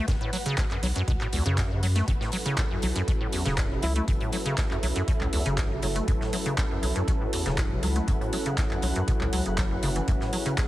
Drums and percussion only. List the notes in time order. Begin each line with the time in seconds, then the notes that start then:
0.08 kick, snare, closed hi-hat
0.33 closed hi-hat, open hi-hat
0.46 closed hi-hat
0.57 kick, snare, clap, closed hi-hat
0.71 clap
0.83 closed hi-hat, open hi-hat
0.96 closed hi-hat
1.08 kick, closed hi-hat
1.21 clap
1.33 closed hi-hat, open hi-hat
1.46 closed hi-hat
1.58 kick, snare, clap, closed hi-hat
1.83 closed hi-hat, open hi-hat
1.96 snare, closed hi-hat
2.08 kick, closed hi-hat
2.21 snare
2.32 closed hi-hat, open hi-hat
2.46 closed hi-hat
2.57 kick, snare, clap, closed hi-hat
2.82 closed hi-hat, open hi-hat
2.96 closed hi-hat
3.08 kick, closed hi-hat
3.32 closed hi-hat, open hi-hat
3.45 snare, closed hi-hat
3.57 kick, snare, clap, closed hi-hat
3.82 closed hi-hat, open hi-hat
3.96 closed hi-hat
4.08 kick, closed hi-hat
4.20 closed hi-hat
4.32 closed hi-hat, open hi-hat
4.46 closed hi-hat
4.57 kick, snare, clap, closed hi-hat
4.71 clap
4.83 closed hi-hat, open hi-hat
4.96 closed hi-hat
5.08 kick, closed hi-hat
5.21 clap
5.33 closed hi-hat, open hi-hat
5.46 closed hi-hat
5.58 kick, snare, clap, closed hi-hat
5.82 closed hi-hat, open hi-hat
5.96 closed hi-hat
6.08 kick, closed hi-hat
6.21 snare
6.33 closed hi-hat, open hi-hat
6.46 closed hi-hat
6.58 kick, snare, clap, closed hi-hat
6.83 closed hi-hat, open hi-hat
6.96 closed hi-hat
7.08 kick, closed hi-hat
7.33 closed hi-hat, open hi-hat
7.46 snare, closed hi-hat
7.57 kick, snare, clap, closed hi-hat
7.83 closed hi-hat, open hi-hat
7.96 closed hi-hat
8.08 kick, closed hi-hat
8.21 closed hi-hat
8.33 closed hi-hat, open hi-hat
8.46 closed hi-hat
8.58 kick, snare, clap, closed hi-hat
8.71 clap
8.82 closed hi-hat, open hi-hat
8.96 closed hi-hat
9.08 kick, closed hi-hat
9.21 clap
9.33 closed hi-hat, open hi-hat
9.46 closed hi-hat
9.57 kick, snare, clap, closed hi-hat
9.83 closed hi-hat, open hi-hat
9.96 closed hi-hat
10.08 kick, closed hi-hat
10.21 snare
10.33 closed hi-hat, open hi-hat
10.46 closed hi-hat
10.57 kick, snare, clap, closed hi-hat